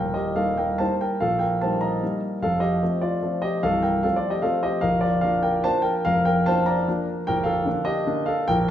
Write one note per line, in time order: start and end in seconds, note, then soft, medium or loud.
0.00 0.36 D#1 soft
0.00 0.36 D#2 soft
0.00 0.14 A#4 soft
0.00 0.15 G5 medium
0.14 0.36 G4 soft
0.14 0.36 D#5 soft
0.36 0.76 G3 soft
0.36 0.76 A#3 soft
0.36 0.76 D#4 soft
0.36 0.57 A4 soft
0.36 0.58 F5 medium
0.57 0.79 A#4 soft
0.57 0.80 G5 medium
0.78 1.17 G3 soft
0.78 1.16 A#3 soft
0.78 1.17 D#4 soft
0.78 0.99 C5 soft
0.78 1.00 A5 medium
1.01 1.20 A#4 soft
1.01 1.21 G5 medium
1.20 1.60 A#1 soft
1.20 1.60 A#2 soft
1.20 1.40 A4 medium
1.20 1.40 F5 medium
1.39 1.60 A#4 soft
1.39 1.60 G5 medium
1.61 1.99 G3 soft
1.61 1.99 A#3 soft
1.61 2.00 D#4 soft
1.61 1.81 C5 soft
1.61 1.82 A5 medium
1.81 2.20 D#5 soft
1.81 2.22 A#5 medium
2.03 2.39 G3 soft
2.03 2.39 A#3 soft
2.03 2.39 D#4 soft
2.42 2.80 F1 soft
2.42 2.81 F2 soft
2.42 2.61 A4 medium
2.42 2.62 F5 medium
2.60 2.98 G4 soft
2.60 3.01 D#5 medium
2.83 3.19 F3 soft
2.83 3.19 A3 soft
2.83 3.19 C4 soft
3.01 3.41 F4 soft
3.01 3.43 D5 medium
3.22 3.60 F3 soft
3.22 3.60 A3 soft
3.22 3.60 C4 soft
3.42 3.62 G4 soft
3.42 3.63 D#5 medium
3.63 4.03 C1 soft
3.63 4.03 C2 soft
3.63 3.83 A4 medium
3.63 3.83 F5 medium
3.83 4.02 A#4 soft
3.83 4.03 G5 medium
4.03 4.41 F3 soft
4.03 4.41 A3 soft
4.03 4.41 C4 soft
4.03 4.17 A4 soft
4.03 4.17 F5 medium
4.16 4.30 F4 soft
4.16 4.31 D5 medium
4.30 4.43 G4 soft
4.30 4.44 D#5 medium
4.42 4.79 F3 soft
4.42 4.79 A3 soft
4.42 4.79 C4 soft
4.42 4.62 A4 medium
4.42 4.63 F5 medium
4.63 4.82 G4 soft
4.63 4.83 D#5 medium
4.81 5.22 A#0 soft
4.81 5.22 A#1 soft
4.81 5.01 A#4 soft
4.81 5.02 F5 medium
5.01 5.22 F4 soft
5.01 5.23 D5 medium
5.21 5.61 F3 soft
5.21 5.61 A#3 soft
5.21 5.62 D4 soft
5.21 5.42 A#4 soft
5.21 5.43 F5 medium
5.43 5.63 A#4 soft
5.43 5.64 G5 medium
5.64 6.01 F3 soft
5.64 6.02 A#3 soft
5.64 6.02 D4 soft
5.64 5.84 C5 medium
5.64 5.85 A5 medium
5.82 6.03 A#4 soft
5.82 6.04 G5 medium
6.05 6.46 F1 soft
6.05 6.45 F2 soft
6.05 6.25 A#4 medium
6.05 6.26 F5 medium
6.25 6.46 A#4 soft
6.25 6.46 G5 medium
6.46 6.83 F3 soft
6.46 6.83 A#3 soft
6.46 6.84 D4 soft
6.46 6.66 C5 medium
6.46 6.67 A5 medium
6.66 7.04 D5 soft
6.66 7.07 A#5 medium
6.88 7.23 F3 soft
6.88 7.24 A#3 soft
6.88 7.24 D4 soft
7.27 7.66 A#0 soft
7.27 7.66 A#1 medium
7.27 7.46 A#4 medium
7.27 7.46 G5 medium
7.44 7.84 A4 medium
7.44 7.86 F5 medium
7.65 8.04 D3 soft
7.65 8.05 A#3 soft
7.65 8.05 D4 soft
7.85 8.26 G4 soft
7.85 8.29 D#5 medium
8.07 8.45 D3 soft
8.07 8.45 A#3 soft
8.07 8.46 D4 soft
8.26 8.48 A4 medium
8.26 8.48 F5 medium
8.48 8.71 A#0 soft
8.48 8.71 A#1 medium
8.48 8.68 A#4 medium
8.48 8.69 G5 medium